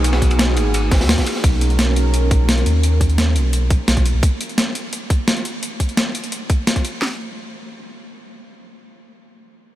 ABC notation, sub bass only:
X:1
M:4/4
L:1/16
Q:1/4=172
K:B
V:1 name="Sub bass" clef=bass
B,,,6 G,,,4 G,,, D,,2 z3 | B,,,12- B,,,2 D,,2- | D,,6 B,,,4- B,,, z B,,,3 B,,, | z16 |
z16 | z16 | z16 |]